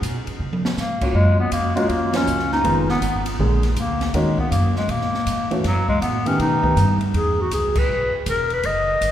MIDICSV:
0, 0, Header, 1, 6, 480
1, 0, Start_track
1, 0, Tempo, 374766
1, 1468, Time_signature, 4, 2, 24, 8
1, 11676, End_track
2, 0, Start_track
2, 0, Title_t, "Clarinet"
2, 0, Program_c, 0, 71
2, 992, Note_on_c, 0, 58, 69
2, 1436, Note_off_c, 0, 58, 0
2, 1473, Note_on_c, 0, 56, 83
2, 1759, Note_off_c, 0, 56, 0
2, 1794, Note_on_c, 0, 59, 79
2, 1940, Note_off_c, 0, 59, 0
2, 1947, Note_on_c, 0, 58, 76
2, 2245, Note_on_c, 0, 56, 78
2, 2264, Note_off_c, 0, 58, 0
2, 2422, Note_on_c, 0, 58, 75
2, 2441, Note_off_c, 0, 56, 0
2, 2759, Note_on_c, 0, 61, 84
2, 2778, Note_off_c, 0, 58, 0
2, 3229, Note_off_c, 0, 61, 0
2, 3236, Note_on_c, 0, 63, 90
2, 3674, Note_off_c, 0, 63, 0
2, 3718, Note_on_c, 0, 59, 74
2, 4155, Note_off_c, 0, 59, 0
2, 4834, Note_on_c, 0, 58, 74
2, 5303, Note_on_c, 0, 56, 78
2, 5323, Note_off_c, 0, 58, 0
2, 5628, Note_on_c, 0, 59, 77
2, 5648, Note_off_c, 0, 56, 0
2, 5770, Note_off_c, 0, 59, 0
2, 5778, Note_on_c, 0, 58, 77
2, 6072, Note_off_c, 0, 58, 0
2, 6112, Note_on_c, 0, 56, 78
2, 6282, Note_on_c, 0, 58, 90
2, 6302, Note_off_c, 0, 56, 0
2, 7066, Note_off_c, 0, 58, 0
2, 7234, Note_on_c, 0, 54, 81
2, 7520, Note_off_c, 0, 54, 0
2, 7538, Note_on_c, 0, 56, 87
2, 7696, Note_off_c, 0, 56, 0
2, 7704, Note_on_c, 0, 59, 82
2, 8029, Note_on_c, 0, 61, 91
2, 8048, Note_off_c, 0, 59, 0
2, 8194, Note_off_c, 0, 61, 0
2, 8211, Note_on_c, 0, 63, 86
2, 8939, Note_off_c, 0, 63, 0
2, 9174, Note_on_c, 0, 68, 74
2, 9493, Note_on_c, 0, 66, 65
2, 9512, Note_off_c, 0, 68, 0
2, 9646, Note_off_c, 0, 66, 0
2, 9655, Note_on_c, 0, 68, 73
2, 9969, Note_on_c, 0, 71, 88
2, 9989, Note_off_c, 0, 68, 0
2, 10434, Note_off_c, 0, 71, 0
2, 10616, Note_on_c, 0, 70, 82
2, 10925, Note_on_c, 0, 71, 82
2, 10945, Note_off_c, 0, 70, 0
2, 11085, Note_on_c, 0, 75, 91
2, 11104, Note_off_c, 0, 71, 0
2, 11676, Note_off_c, 0, 75, 0
2, 11676, End_track
3, 0, Start_track
3, 0, Title_t, "Grand piano"
3, 0, Program_c, 1, 0
3, 1303, Note_on_c, 1, 65, 58
3, 1308, Note_on_c, 1, 58, 52
3, 1310, Note_on_c, 1, 61, 48
3, 1321, Note_on_c, 1, 66, 59
3, 1916, Note_off_c, 1, 65, 0
3, 1919, Note_off_c, 1, 58, 0
3, 1920, Note_off_c, 1, 61, 0
3, 1925, Note_off_c, 1, 66, 0
3, 2252, Note_on_c, 1, 65, 74
3, 2257, Note_on_c, 1, 58, 62
3, 2262, Note_on_c, 1, 61, 66
3, 2263, Note_on_c, 1, 66, 77
3, 2704, Note_off_c, 1, 65, 0
3, 2706, Note_off_c, 1, 58, 0
3, 2709, Note_off_c, 1, 61, 0
3, 2709, Note_off_c, 1, 66, 0
3, 2737, Note_on_c, 1, 53, 67
3, 2744, Note_on_c, 1, 58, 66
3, 2746, Note_on_c, 1, 61, 60
3, 2753, Note_on_c, 1, 65, 76
3, 2891, Note_off_c, 1, 53, 0
3, 2894, Note_off_c, 1, 58, 0
3, 2895, Note_off_c, 1, 61, 0
3, 2898, Note_off_c, 1, 65, 0
3, 3375, Note_on_c, 1, 51, 63
3, 3382, Note_on_c, 1, 56, 57
3, 3386, Note_on_c, 1, 59, 56
3, 3391, Note_on_c, 1, 65, 71
3, 3661, Note_off_c, 1, 51, 0
3, 3664, Note_off_c, 1, 56, 0
3, 3666, Note_off_c, 1, 59, 0
3, 3669, Note_off_c, 1, 65, 0
3, 4346, Note_on_c, 1, 50, 60
3, 4351, Note_on_c, 1, 56, 58
3, 4355, Note_on_c, 1, 58, 57
3, 4360, Note_on_c, 1, 68, 72
3, 4627, Note_off_c, 1, 50, 0
3, 4629, Note_off_c, 1, 56, 0
3, 4631, Note_off_c, 1, 58, 0
3, 4634, Note_off_c, 1, 68, 0
3, 5304, Note_on_c, 1, 51, 65
3, 5310, Note_on_c, 1, 58, 64
3, 5319, Note_on_c, 1, 61, 62
3, 5319, Note_on_c, 1, 66, 67
3, 5585, Note_off_c, 1, 51, 0
3, 5589, Note_off_c, 1, 58, 0
3, 5593, Note_off_c, 1, 61, 0
3, 5593, Note_off_c, 1, 66, 0
3, 7055, Note_on_c, 1, 52, 59
3, 7056, Note_on_c, 1, 57, 59
3, 7064, Note_on_c, 1, 61, 56
3, 7069, Note_on_c, 1, 66, 65
3, 7210, Note_off_c, 1, 52, 0
3, 7210, Note_off_c, 1, 57, 0
3, 7214, Note_off_c, 1, 61, 0
3, 7217, Note_off_c, 1, 66, 0
3, 8012, Note_on_c, 1, 51, 61
3, 8018, Note_on_c, 1, 57, 55
3, 8024, Note_on_c, 1, 59, 64
3, 8024, Note_on_c, 1, 67, 76
3, 8465, Note_off_c, 1, 51, 0
3, 8468, Note_off_c, 1, 57, 0
3, 8470, Note_off_c, 1, 67, 0
3, 8471, Note_off_c, 1, 59, 0
3, 8487, Note_on_c, 1, 51, 68
3, 8488, Note_on_c, 1, 57, 64
3, 8496, Note_on_c, 1, 59, 67
3, 8502, Note_on_c, 1, 67, 72
3, 8646, Note_off_c, 1, 51, 0
3, 8646, Note_off_c, 1, 57, 0
3, 8651, Note_off_c, 1, 59, 0
3, 8653, Note_off_c, 1, 67, 0
3, 11676, End_track
4, 0, Start_track
4, 0, Title_t, "Upright bass"
4, 0, Program_c, 2, 32
4, 24, Note_on_c, 2, 47, 79
4, 314, Note_off_c, 2, 47, 0
4, 507, Note_on_c, 2, 49, 74
4, 973, Note_off_c, 2, 49, 0
4, 983, Note_on_c, 2, 44, 79
4, 1451, Note_off_c, 2, 44, 0
4, 1462, Note_on_c, 2, 42, 83
4, 1930, Note_off_c, 2, 42, 0
4, 1942, Note_on_c, 2, 41, 75
4, 2410, Note_off_c, 2, 41, 0
4, 2423, Note_on_c, 2, 39, 78
4, 2891, Note_off_c, 2, 39, 0
4, 2906, Note_on_c, 2, 37, 78
4, 3373, Note_off_c, 2, 37, 0
4, 3387, Note_on_c, 2, 29, 72
4, 3850, Note_off_c, 2, 29, 0
4, 3858, Note_on_c, 2, 32, 72
4, 4329, Note_off_c, 2, 32, 0
4, 4338, Note_on_c, 2, 34, 82
4, 4809, Note_off_c, 2, 34, 0
4, 4817, Note_on_c, 2, 38, 90
4, 5288, Note_off_c, 2, 38, 0
4, 5296, Note_on_c, 2, 39, 79
4, 5768, Note_off_c, 2, 39, 0
4, 5779, Note_on_c, 2, 42, 79
4, 6249, Note_off_c, 2, 42, 0
4, 6258, Note_on_c, 2, 46, 83
4, 6729, Note_off_c, 2, 46, 0
4, 6740, Note_on_c, 2, 44, 77
4, 7210, Note_off_c, 2, 44, 0
4, 7226, Note_on_c, 2, 42, 76
4, 7693, Note_off_c, 2, 42, 0
4, 7705, Note_on_c, 2, 45, 78
4, 8173, Note_off_c, 2, 45, 0
4, 8187, Note_on_c, 2, 47, 78
4, 8653, Note_off_c, 2, 47, 0
4, 8661, Note_on_c, 2, 43, 88
4, 9131, Note_off_c, 2, 43, 0
4, 9141, Note_on_c, 2, 40, 77
4, 9610, Note_off_c, 2, 40, 0
4, 9623, Note_on_c, 2, 37, 72
4, 10092, Note_off_c, 2, 37, 0
4, 10103, Note_on_c, 2, 35, 71
4, 10394, Note_off_c, 2, 35, 0
4, 10584, Note_on_c, 2, 28, 90
4, 11052, Note_off_c, 2, 28, 0
4, 11062, Note_on_c, 2, 30, 80
4, 11531, Note_off_c, 2, 30, 0
4, 11541, Note_on_c, 2, 32, 73
4, 11676, Note_off_c, 2, 32, 0
4, 11676, End_track
5, 0, Start_track
5, 0, Title_t, "Muted upright bass strokes"
5, 350, Note_on_c, 9, 29, 35
5, 478, Note_off_c, 9, 29, 0
5, 10414, Note_on_c, 9, 29, 37
5, 10542, Note_off_c, 9, 29, 0
5, 11676, End_track
6, 0, Start_track
6, 0, Title_t, "Drums"
6, 32, Note_on_c, 9, 36, 21
6, 39, Note_on_c, 9, 44, 47
6, 39, Note_on_c, 9, 51, 62
6, 160, Note_off_c, 9, 36, 0
6, 167, Note_off_c, 9, 44, 0
6, 167, Note_off_c, 9, 51, 0
6, 346, Note_on_c, 9, 51, 42
6, 474, Note_off_c, 9, 51, 0
6, 676, Note_on_c, 9, 48, 51
6, 804, Note_off_c, 9, 48, 0
6, 833, Note_on_c, 9, 38, 76
6, 961, Note_off_c, 9, 38, 0
6, 992, Note_on_c, 9, 38, 49
6, 992, Note_on_c, 9, 44, 43
6, 1120, Note_off_c, 9, 38, 0
6, 1120, Note_off_c, 9, 44, 0
6, 1297, Note_on_c, 9, 49, 61
6, 1299, Note_on_c, 9, 36, 65
6, 1425, Note_off_c, 9, 49, 0
6, 1427, Note_off_c, 9, 36, 0
6, 1942, Note_on_c, 9, 44, 52
6, 1942, Note_on_c, 9, 51, 65
6, 1946, Note_on_c, 9, 36, 18
6, 2070, Note_off_c, 9, 44, 0
6, 2070, Note_off_c, 9, 51, 0
6, 2074, Note_off_c, 9, 36, 0
6, 2262, Note_on_c, 9, 51, 46
6, 2390, Note_off_c, 9, 51, 0
6, 2426, Note_on_c, 9, 51, 49
6, 2427, Note_on_c, 9, 36, 18
6, 2554, Note_off_c, 9, 51, 0
6, 2555, Note_off_c, 9, 36, 0
6, 2734, Note_on_c, 9, 38, 72
6, 2734, Note_on_c, 9, 51, 66
6, 2862, Note_off_c, 9, 38, 0
6, 2862, Note_off_c, 9, 51, 0
6, 2905, Note_on_c, 9, 44, 55
6, 3033, Note_off_c, 9, 44, 0
6, 3066, Note_on_c, 9, 38, 28
6, 3194, Note_off_c, 9, 38, 0
6, 3228, Note_on_c, 9, 38, 37
6, 3356, Note_off_c, 9, 38, 0
6, 3386, Note_on_c, 9, 36, 22
6, 3388, Note_on_c, 9, 51, 57
6, 3514, Note_off_c, 9, 36, 0
6, 3517, Note_off_c, 9, 51, 0
6, 3701, Note_on_c, 9, 38, 48
6, 3829, Note_off_c, 9, 38, 0
6, 3864, Note_on_c, 9, 36, 18
6, 3866, Note_on_c, 9, 44, 55
6, 3866, Note_on_c, 9, 51, 60
6, 3992, Note_off_c, 9, 36, 0
6, 3994, Note_off_c, 9, 44, 0
6, 3994, Note_off_c, 9, 51, 0
6, 4172, Note_on_c, 9, 51, 64
6, 4300, Note_off_c, 9, 51, 0
6, 4342, Note_on_c, 9, 36, 20
6, 4470, Note_off_c, 9, 36, 0
6, 4650, Note_on_c, 9, 38, 30
6, 4650, Note_on_c, 9, 51, 46
6, 4778, Note_off_c, 9, 38, 0
6, 4778, Note_off_c, 9, 51, 0
6, 4820, Note_on_c, 9, 44, 50
6, 4820, Note_on_c, 9, 51, 59
6, 4823, Note_on_c, 9, 36, 17
6, 4948, Note_off_c, 9, 44, 0
6, 4948, Note_off_c, 9, 51, 0
6, 4951, Note_off_c, 9, 36, 0
6, 5135, Note_on_c, 9, 38, 48
6, 5135, Note_on_c, 9, 51, 41
6, 5263, Note_off_c, 9, 38, 0
6, 5263, Note_off_c, 9, 51, 0
6, 5301, Note_on_c, 9, 36, 23
6, 5301, Note_on_c, 9, 51, 54
6, 5429, Note_off_c, 9, 36, 0
6, 5429, Note_off_c, 9, 51, 0
6, 5612, Note_on_c, 9, 36, 49
6, 5740, Note_off_c, 9, 36, 0
6, 5785, Note_on_c, 9, 36, 21
6, 5787, Note_on_c, 9, 44, 45
6, 5787, Note_on_c, 9, 51, 53
6, 5913, Note_off_c, 9, 36, 0
6, 5915, Note_off_c, 9, 44, 0
6, 5915, Note_off_c, 9, 51, 0
6, 6096, Note_on_c, 9, 38, 39
6, 6224, Note_off_c, 9, 38, 0
6, 6259, Note_on_c, 9, 51, 52
6, 6264, Note_on_c, 9, 36, 19
6, 6387, Note_off_c, 9, 51, 0
6, 6392, Note_off_c, 9, 36, 0
6, 6421, Note_on_c, 9, 38, 29
6, 6549, Note_off_c, 9, 38, 0
6, 6587, Note_on_c, 9, 38, 37
6, 6715, Note_off_c, 9, 38, 0
6, 6745, Note_on_c, 9, 44, 56
6, 6745, Note_on_c, 9, 51, 61
6, 6746, Note_on_c, 9, 36, 16
6, 6873, Note_off_c, 9, 44, 0
6, 6873, Note_off_c, 9, 51, 0
6, 6874, Note_off_c, 9, 36, 0
6, 7059, Note_on_c, 9, 51, 37
6, 7187, Note_off_c, 9, 51, 0
6, 7226, Note_on_c, 9, 38, 38
6, 7226, Note_on_c, 9, 51, 53
6, 7229, Note_on_c, 9, 36, 19
6, 7354, Note_off_c, 9, 38, 0
6, 7354, Note_off_c, 9, 51, 0
6, 7357, Note_off_c, 9, 36, 0
6, 7539, Note_on_c, 9, 36, 55
6, 7667, Note_off_c, 9, 36, 0
6, 7709, Note_on_c, 9, 36, 23
6, 7711, Note_on_c, 9, 44, 43
6, 7711, Note_on_c, 9, 51, 59
6, 7837, Note_off_c, 9, 36, 0
6, 7839, Note_off_c, 9, 44, 0
6, 7839, Note_off_c, 9, 51, 0
6, 8020, Note_on_c, 9, 51, 47
6, 8148, Note_off_c, 9, 51, 0
6, 8188, Note_on_c, 9, 36, 23
6, 8192, Note_on_c, 9, 51, 49
6, 8316, Note_off_c, 9, 36, 0
6, 8320, Note_off_c, 9, 51, 0
6, 8497, Note_on_c, 9, 36, 62
6, 8626, Note_off_c, 9, 36, 0
6, 8669, Note_on_c, 9, 44, 46
6, 8669, Note_on_c, 9, 51, 58
6, 8798, Note_off_c, 9, 44, 0
6, 8798, Note_off_c, 9, 51, 0
6, 8974, Note_on_c, 9, 51, 38
6, 9102, Note_off_c, 9, 51, 0
6, 9146, Note_on_c, 9, 36, 21
6, 9147, Note_on_c, 9, 51, 55
6, 9274, Note_off_c, 9, 36, 0
6, 9275, Note_off_c, 9, 51, 0
6, 9623, Note_on_c, 9, 44, 53
6, 9623, Note_on_c, 9, 51, 59
6, 9626, Note_on_c, 9, 36, 22
6, 9751, Note_off_c, 9, 44, 0
6, 9751, Note_off_c, 9, 51, 0
6, 9754, Note_off_c, 9, 36, 0
6, 9932, Note_on_c, 9, 49, 64
6, 9934, Note_on_c, 9, 36, 75
6, 10060, Note_off_c, 9, 49, 0
6, 10062, Note_off_c, 9, 36, 0
6, 10582, Note_on_c, 9, 36, 19
6, 10582, Note_on_c, 9, 44, 50
6, 10582, Note_on_c, 9, 51, 64
6, 10710, Note_off_c, 9, 36, 0
6, 10710, Note_off_c, 9, 44, 0
6, 10710, Note_off_c, 9, 51, 0
6, 10889, Note_on_c, 9, 51, 37
6, 11017, Note_off_c, 9, 51, 0
6, 11058, Note_on_c, 9, 51, 57
6, 11061, Note_on_c, 9, 36, 17
6, 11186, Note_off_c, 9, 51, 0
6, 11189, Note_off_c, 9, 36, 0
6, 11546, Note_on_c, 9, 36, 17
6, 11546, Note_on_c, 9, 44, 54
6, 11546, Note_on_c, 9, 51, 60
6, 11674, Note_off_c, 9, 36, 0
6, 11674, Note_off_c, 9, 44, 0
6, 11674, Note_off_c, 9, 51, 0
6, 11676, End_track
0, 0, End_of_file